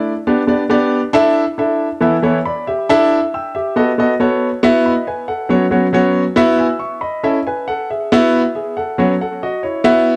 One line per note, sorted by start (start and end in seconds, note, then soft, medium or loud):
0.00 0.11 A3 medium
0.00 0.11 D4 medium
0.00 0.12 E4 medium
0.00 0.12 D5 medium
0.27 0.41 B3 medium
0.27 0.42 D4 medium
0.27 0.42 G4 medium
0.27 0.41 D5 medium
0.47 0.62 B3 medium
0.47 0.62 D4 medium
0.47 0.63 G4 medium
0.47 0.63 D5 medium
0.70 0.99 B3 medium
0.70 0.99 D4 medium
0.70 0.99 G4 medium
0.70 1.00 D5 loud
1.13 1.43 D4 loud
1.13 1.43 E4 loud
1.13 1.43 A4 loud
1.13 1.43 E5 loud
1.58 1.87 D4 medium
1.58 1.87 E4 medium
1.58 1.87 A4 medium
1.58 1.87 E5 medium
2.01 2.15 E3 medium
2.01 2.15 B3 medium
2.01 2.16 E4 medium
2.01 2.16 A4 medium
2.01 2.16 E5 medium
2.22 2.37 E3 medium
2.22 2.38 B3 medium
2.22 2.38 E4 medium
2.22 2.37 A4 medium
2.22 2.38 C#5 medium
2.45 2.66 D5 medium
2.45 2.66 B5 medium
2.67 3.09 G4 medium
2.67 2.89 E5 medium
2.89 3.18 D4 loud
2.89 3.18 E4 loud
2.89 3.18 A4 loud
2.89 3.18 E5 loud
3.34 3.54 G5 medium
3.34 3.54 E6 medium
3.55 3.96 G4 medium
3.55 3.96 E5 medium
3.76 3.90 B3 medium
3.76 3.91 F#4 medium
3.76 3.91 A4 medium
3.76 3.90 D#5 medium
3.98 4.12 B3 medium
3.98 4.12 F#4 medium
3.98 4.13 A4 medium
3.98 4.13 D#5 medium
4.20 4.48 B3 medium
4.20 4.49 F#4 medium
4.20 4.49 A4 medium
4.20 4.49 C#5 loud
4.63 4.92 B3 loud
4.63 4.92 E4 loud
4.63 4.92 F#4 loud
4.63 4.85 E5 loud
4.86 5.06 D#5 medium
4.86 5.06 B5 medium
5.07 5.28 B4 medium
5.07 5.27 G#5 medium
5.28 5.69 A4 medium
5.28 5.69 F#5 medium
5.49 5.64 F#3 medium
5.49 5.64 B3 medium
5.49 5.64 C#4 medium
5.49 5.64 F#4 medium
5.49 5.64 C#5 medium
5.71 5.85 F#3 medium
5.71 5.86 B3 medium
5.71 5.86 C#4 medium
5.71 5.86 F#4 medium
5.71 5.86 C#5 medium
5.93 6.22 F#3 medium
5.93 6.22 B3 medium
5.93 6.22 C#4 medium
5.93 6.23 F#4 medium
5.93 6.23 C#5 loud
6.36 6.65 B3 loud
6.36 6.65 E4 loud
6.36 6.65 F#4 loud
6.36 6.59 E5 loud
6.59 6.79 G#5 medium
6.59 6.79 E6 medium
6.79 7.01 E5 medium
6.79 7.00 C#6 medium
7.01 7.43 D#5 medium
7.01 7.43 B5 medium
7.23 7.38 C#4 medium
7.23 7.38 E4 medium
7.23 7.38 A4 medium
7.23 7.38 E5 loud
7.47 7.67 B4 medium
7.47 7.67 G#5 medium
7.68 7.89 A4 medium
7.68 7.88 F#5 medium
7.90 8.31 G#4 medium
7.90 8.12 E5 medium
8.12 8.40 B3 loud
8.12 8.41 E4 loud
8.12 8.41 F#4 loud
8.12 8.41 E5 loud
8.55 8.76 G#4 medium
8.55 8.75 E5 medium
8.77 9.18 A4 medium
8.77 9.18 F#5 medium
8.98 9.12 F#3 medium
8.98 9.12 B3 medium
8.98 9.13 C#4 medium
8.98 9.13 F#4 medium
8.98 9.13 C#5 medium
9.21 9.41 A4 medium
9.21 9.41 F#5 medium
9.43 9.63 F#4 medium
9.43 9.63 D#5 medium
9.63 9.83 E4 medium
9.63 10.04 C#5 medium
9.84 10.13 B3 loud
9.84 10.14 E4 loud
9.84 10.14 F#4 loud
9.84 10.14 E5 loud